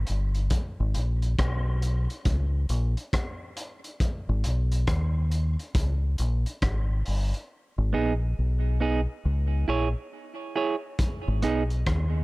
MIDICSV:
0, 0, Header, 1, 4, 480
1, 0, Start_track
1, 0, Key_signature, 5, "minor"
1, 0, Tempo, 873362
1, 279, Time_signature, 4, 2, 24, 8
1, 6727, End_track
2, 0, Start_track
2, 0, Title_t, "Clean electric guitar"
2, 0, Program_c, 0, 27
2, 4357, Note_on_c, 0, 59, 68
2, 4363, Note_on_c, 0, 63, 77
2, 4366, Note_on_c, 0, 68, 82
2, 4463, Note_off_c, 0, 59, 0
2, 4466, Note_off_c, 0, 63, 0
2, 4468, Note_off_c, 0, 68, 0
2, 4840, Note_on_c, 0, 59, 71
2, 4842, Note_on_c, 0, 63, 77
2, 4847, Note_on_c, 0, 68, 85
2, 4945, Note_off_c, 0, 59, 0
2, 4946, Note_off_c, 0, 63, 0
2, 4948, Note_off_c, 0, 68, 0
2, 5319, Note_on_c, 0, 64, 86
2, 5325, Note_on_c, 0, 68, 85
2, 5330, Note_on_c, 0, 73, 85
2, 5424, Note_off_c, 0, 64, 0
2, 5427, Note_off_c, 0, 68, 0
2, 5430, Note_off_c, 0, 73, 0
2, 5801, Note_on_c, 0, 64, 76
2, 5802, Note_on_c, 0, 68, 88
2, 5810, Note_on_c, 0, 73, 83
2, 5906, Note_off_c, 0, 64, 0
2, 5907, Note_off_c, 0, 68, 0
2, 5910, Note_off_c, 0, 73, 0
2, 6279, Note_on_c, 0, 59, 78
2, 6285, Note_on_c, 0, 63, 89
2, 6289, Note_on_c, 0, 68, 80
2, 6385, Note_off_c, 0, 59, 0
2, 6388, Note_off_c, 0, 63, 0
2, 6390, Note_off_c, 0, 68, 0
2, 6727, End_track
3, 0, Start_track
3, 0, Title_t, "Fingered electric bass"
3, 0, Program_c, 1, 33
3, 51, Note_on_c, 1, 31, 75
3, 263, Note_off_c, 1, 31, 0
3, 440, Note_on_c, 1, 32, 90
3, 515, Note_off_c, 1, 32, 0
3, 527, Note_on_c, 1, 34, 80
3, 741, Note_off_c, 1, 34, 0
3, 766, Note_on_c, 1, 35, 96
3, 1132, Note_off_c, 1, 35, 0
3, 1242, Note_on_c, 1, 37, 93
3, 1458, Note_off_c, 1, 37, 0
3, 1481, Note_on_c, 1, 34, 93
3, 1617, Note_off_c, 1, 34, 0
3, 2358, Note_on_c, 1, 32, 102
3, 2434, Note_off_c, 1, 32, 0
3, 2450, Note_on_c, 1, 35, 86
3, 2662, Note_off_c, 1, 35, 0
3, 2682, Note_on_c, 1, 39, 80
3, 3051, Note_off_c, 1, 39, 0
3, 3162, Note_on_c, 1, 37, 85
3, 3379, Note_off_c, 1, 37, 0
3, 3404, Note_on_c, 1, 34, 88
3, 3540, Note_off_c, 1, 34, 0
3, 3644, Note_on_c, 1, 32, 92
3, 3860, Note_off_c, 1, 32, 0
3, 3888, Note_on_c, 1, 31, 81
3, 4022, Note_off_c, 1, 31, 0
3, 4276, Note_on_c, 1, 32, 99
3, 4354, Note_off_c, 1, 32, 0
3, 4364, Note_on_c, 1, 34, 76
3, 4580, Note_off_c, 1, 34, 0
3, 4609, Note_on_c, 1, 35, 82
3, 4975, Note_off_c, 1, 35, 0
3, 5085, Note_on_c, 1, 37, 91
3, 5301, Note_off_c, 1, 37, 0
3, 5323, Note_on_c, 1, 34, 86
3, 5460, Note_off_c, 1, 34, 0
3, 6199, Note_on_c, 1, 32, 105
3, 6276, Note_off_c, 1, 32, 0
3, 6286, Note_on_c, 1, 35, 76
3, 6502, Note_off_c, 1, 35, 0
3, 6523, Note_on_c, 1, 39, 84
3, 6727, Note_off_c, 1, 39, 0
3, 6727, End_track
4, 0, Start_track
4, 0, Title_t, "Drums"
4, 37, Note_on_c, 9, 42, 76
4, 92, Note_off_c, 9, 42, 0
4, 190, Note_on_c, 9, 42, 46
4, 245, Note_off_c, 9, 42, 0
4, 276, Note_on_c, 9, 42, 92
4, 279, Note_on_c, 9, 36, 99
4, 331, Note_off_c, 9, 42, 0
4, 334, Note_off_c, 9, 36, 0
4, 519, Note_on_c, 9, 42, 75
4, 574, Note_off_c, 9, 42, 0
4, 672, Note_on_c, 9, 42, 41
4, 727, Note_off_c, 9, 42, 0
4, 762, Note_on_c, 9, 36, 96
4, 762, Note_on_c, 9, 42, 79
4, 764, Note_on_c, 9, 37, 108
4, 816, Note_off_c, 9, 36, 0
4, 817, Note_off_c, 9, 42, 0
4, 819, Note_off_c, 9, 37, 0
4, 1002, Note_on_c, 9, 42, 65
4, 1057, Note_off_c, 9, 42, 0
4, 1154, Note_on_c, 9, 42, 43
4, 1209, Note_off_c, 9, 42, 0
4, 1238, Note_on_c, 9, 42, 87
4, 1239, Note_on_c, 9, 36, 117
4, 1293, Note_off_c, 9, 42, 0
4, 1294, Note_off_c, 9, 36, 0
4, 1479, Note_on_c, 9, 42, 60
4, 1534, Note_off_c, 9, 42, 0
4, 1633, Note_on_c, 9, 42, 43
4, 1688, Note_off_c, 9, 42, 0
4, 1721, Note_on_c, 9, 36, 89
4, 1721, Note_on_c, 9, 42, 82
4, 1724, Note_on_c, 9, 37, 105
4, 1776, Note_off_c, 9, 36, 0
4, 1776, Note_off_c, 9, 42, 0
4, 1779, Note_off_c, 9, 37, 0
4, 1961, Note_on_c, 9, 42, 79
4, 2016, Note_off_c, 9, 42, 0
4, 2112, Note_on_c, 9, 42, 45
4, 2167, Note_off_c, 9, 42, 0
4, 2200, Note_on_c, 9, 36, 102
4, 2200, Note_on_c, 9, 42, 83
4, 2254, Note_off_c, 9, 36, 0
4, 2255, Note_off_c, 9, 42, 0
4, 2440, Note_on_c, 9, 42, 79
4, 2495, Note_off_c, 9, 42, 0
4, 2592, Note_on_c, 9, 42, 46
4, 2647, Note_off_c, 9, 42, 0
4, 2678, Note_on_c, 9, 42, 78
4, 2680, Note_on_c, 9, 36, 107
4, 2680, Note_on_c, 9, 37, 102
4, 2733, Note_off_c, 9, 42, 0
4, 2735, Note_off_c, 9, 36, 0
4, 2735, Note_off_c, 9, 37, 0
4, 2921, Note_on_c, 9, 42, 68
4, 2976, Note_off_c, 9, 42, 0
4, 3074, Note_on_c, 9, 42, 45
4, 3129, Note_off_c, 9, 42, 0
4, 3159, Note_on_c, 9, 36, 119
4, 3162, Note_on_c, 9, 42, 96
4, 3214, Note_off_c, 9, 36, 0
4, 3217, Note_off_c, 9, 42, 0
4, 3398, Note_on_c, 9, 42, 66
4, 3452, Note_off_c, 9, 42, 0
4, 3551, Note_on_c, 9, 42, 45
4, 3606, Note_off_c, 9, 42, 0
4, 3639, Note_on_c, 9, 36, 107
4, 3639, Note_on_c, 9, 42, 72
4, 3642, Note_on_c, 9, 37, 98
4, 3693, Note_off_c, 9, 42, 0
4, 3694, Note_off_c, 9, 36, 0
4, 3697, Note_off_c, 9, 37, 0
4, 3878, Note_on_c, 9, 46, 80
4, 3933, Note_off_c, 9, 46, 0
4, 4033, Note_on_c, 9, 42, 46
4, 4088, Note_off_c, 9, 42, 0
4, 6039, Note_on_c, 9, 42, 85
4, 6040, Note_on_c, 9, 36, 97
4, 6094, Note_off_c, 9, 42, 0
4, 6095, Note_off_c, 9, 36, 0
4, 6279, Note_on_c, 9, 42, 72
4, 6334, Note_off_c, 9, 42, 0
4, 6432, Note_on_c, 9, 42, 38
4, 6487, Note_off_c, 9, 42, 0
4, 6521, Note_on_c, 9, 36, 97
4, 6521, Note_on_c, 9, 42, 70
4, 6522, Note_on_c, 9, 37, 103
4, 6576, Note_off_c, 9, 36, 0
4, 6576, Note_off_c, 9, 42, 0
4, 6577, Note_off_c, 9, 37, 0
4, 6727, End_track
0, 0, End_of_file